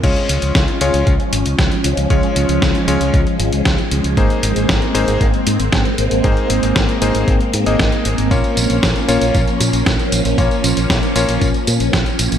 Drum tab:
CC |x---------------|----------------|----------------|----------------|
HH |xxxxxxxxxxxxxxxx|xxxxxxxxxxxxxxxx|xxxxxxxxxxxxxxxx|xxxxxxxxxxxxxxxx|
TB |----------------|----------------|----------------|----------------|
SD |----o-------o---|----o-------o---|----o-------o---|----o-------o---|
BD |o---o---o---o---|o---o---o---o---|o---o---o---o---|o---o---o---o---|

CC |----------------|----------------|
HH |xxxxxxxxxxxxxxxx|xxxxxxxxxxxxxxxx|
TB |xxxxxxxxxxxxxxxx|xxxxxxxxxxxxxxxx|
SD |----o-------o---|----o-------o---|
BD |o---o---o---o---|o---o---o---o---|